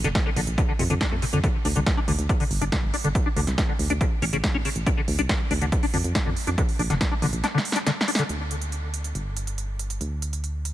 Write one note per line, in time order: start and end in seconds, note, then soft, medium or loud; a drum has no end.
0.04 0.13 F1 medium
0.04 0.08 D3 medium
0.04 snare soft
0.04 closed hi-hat medium
0.15 kick loud
0.15 snare loud
0.15 closed hi-hat medium
0.26 0.30 D3 loud
0.36 0.45 A#1 loud
0.36 0.40 D3 medium
0.36 open hi-hat loud
0.47 0.56 A#1 medium
0.47 closed hi-hat medium
0.58 0.62 D3 loud
0.58 kick loud
0.58 closed hi-hat medium
0.69 0.72 D3 medium
0.79 0.88 F2 medium
0.79 0.83 C3 medium
0.79 open hi-hat loud
0.90 0.99 F2 medium
0.90 0.94 D3 loud
0.90 closed hi-hat medium
1.01 1.07 D4 medium
1.01 kick loud
1.01 snare loud
1.01 closed hi-hat medium
1.11 1.20 F2 medium
1.11 1.15 A3 medium
1.22 1.25 C3 medium
1.22 open hi-hat loud
1.33 1.42 F2 medium
1.33 1.39 D3 loud
1.33 closed hi-hat medium
1.44 1.48 D3 medium
1.44 kick loud
1.44 closed hi-hat medium
1.65 1.74 D2 medium
1.65 1.67 D4 loud
1.65 open hi-hat loud
1.76 1.84 C2 medium
1.76 1.80 D3 medium
1.76 closed hi-hat medium
1.86 kick loud
1.86 snare loud
1.86 closed hi-hat medium
1.97 2.00 D4 loud
2.08 2.17 D2 loud
2.08 2.12 D3 medium
2.08 open hi-hat loud
2.19 2.27 D2 medium
2.19 closed hi-hat medium
2.29 2.32 D4 loud
2.29 kick loud
2.29 closed hi-hat medium
2.40 2.44 D3 medium
2.40 open hi-hat medium
2.51 2.59 G1 medium
2.51 open hi-hat loud
2.61 2.70 G1 medium
2.61 2.64 D4 loud
2.61 closed hi-hat medium
2.72 2.76 D3 medium
2.72 kick loud
2.72 snare loud
2.72 closed hi-hat medium
2.83 2.92 G1 medium
2.94 2.96 D4 loud
2.94 open hi-hat loud
3.04 3.13 G1 medium
3.04 3.08 D3 medium
3.04 closed hi-hat medium
3.15 kick loud
3.15 closed hi-hat medium
3.26 3.28 D4 loud
3.36 3.45 D2 medium
3.36 3.40 D3 medium
3.36 open hi-hat loud
3.47 3.56 C2 medium
3.47 snare soft
3.47 closed hi-hat medium
3.58 3.60 D4 loud
3.58 kick loud
3.58 snare loud
3.58 closed hi-hat medium
3.69 3.73 D3 medium
3.79 3.88 D2 medium
3.79 open hi-hat loud
3.90 3.99 D2 medium
3.90 3.92 D4 loud
3.90 closed hi-hat medium
4.01 4.05 C#3 medium
4.01 kick loud
4.01 closed hi-hat medium
4.22 4.31 A1 medium
4.22 4.25 C#4 loud
4.22 open hi-hat loud
4.33 4.42 A1 medium
4.33 4.37 C#3 medium
4.33 closed hi-hat medium
4.44 kick loud
4.44 snare loud
4.44 closed hi-hat medium
4.54 4.63 A1 medium
4.54 4.57 C#4 loud
4.65 4.69 C#3 medium
4.65 open hi-hat loud
4.76 4.84 A1 medium
4.76 closed hi-hat medium
4.87 4.89 D4 medium
4.87 kick loud
4.87 closed hi-hat medium
4.97 5.01 D3 medium
5.08 5.17 D2 loud
5.08 open hi-hat medium
5.19 5.27 C2 medium
5.19 5.21 D4 medium
5.19 closed hi-hat medium
5.29 5.33 D3 medium
5.29 kick loud
5.29 snare loud
5.29 closed hi-hat medium
5.51 5.59 D2 loud
5.51 5.53 D4 loud
5.51 open hi-hat loud
5.62 5.70 D2 medium
5.62 5.65 D3 medium
5.62 closed hi-hat medium
5.72 kick loud
5.72 closed hi-hat medium
5.83 5.85 D4 loud
5.83 open hi-hat medium
5.94 6.02 F2 medium
5.94 5.97 D3 medium
5.94 open hi-hat loud
6.04 6.13 F2 medium
6.04 closed hi-hat medium
6.15 6.17 D4 loud
6.15 kick loud
6.15 snare loud
6.15 closed hi-hat medium
6.26 6.34 F2 medium
6.26 6.30 D3 medium
6.37 open hi-hat loud
6.47 6.56 F2 medium
6.47 6.50 D4 loud
6.47 closed hi-hat medium
6.58 6.62 D3 medium
6.58 kick loud
6.58 closed hi-hat medium
6.69 open hi-hat medium
6.79 6.88 A#1 medium
6.79 6.82 D4 loud
6.79 open hi-hat loud
6.90 6.99 F1 medium
6.90 6.94 D3 medium
6.90 snare soft
6.90 closed hi-hat medium
7.01 kick loud
7.01 snare loud
7.01 closed hi-hat medium
7.11 7.14 D4 loud
7.22 7.31 A#1 loud
7.22 7.26 D3 medium
7.22 open hi-hat loud
7.33 7.42 A#1 medium
7.33 closed hi-hat medium
7.44 7.46 D4 loud
7.44 snare medium
7.44 closed hi-hat medium
7.54 7.58 D3 medium
7.54 snare medium
7.65 open hi-hat loud
7.72 7.78 D4 loud
7.72 snare medium
7.72 closed hi-hat medium
7.87 7.90 D3 medium
7.87 snare medium
7.87 closed hi-hat medium
8.01 snare medium
8.08 8.10 D4 loud
8.08 open hi-hat loud
8.15 8.22 D3 medium
8.15 snare loud
8.15 closed hi-hat medium
8.29 9.13 D2 medium
8.29 closed hi-hat medium
8.51 closed hi-hat medium
8.62 closed hi-hat medium
8.72 closed hi-hat medium
8.94 closed hi-hat medium
9.04 closed hi-hat medium
9.15 9.99 G1 medium
9.15 closed hi-hat medium
9.37 closed hi-hat medium
9.47 closed hi-hat medium
9.58 closed hi-hat medium
9.79 closed hi-hat medium
9.90 closed hi-hat medium
10.01 10.73 D2 medium
10.01 closed hi-hat medium
10.22 closed hi-hat medium
10.33 closed hi-hat medium
10.44 closed hi-hat medium
10.65 closed hi-hat medium